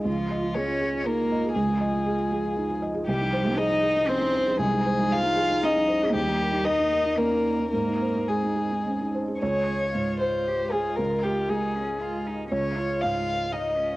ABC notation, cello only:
X:1
M:3/4
L:1/8
Q:1/4=118
K:Dblyd
V:1 name="Cello"
F,2 D2 B,2 | A,4- A, z | G,2 E2 C2 | A,2 F2 E2 |
G,2 E2 B,2 | B,2 A,3 z | A2 F2 G F- | F2 E D F E |
D F3 E D |]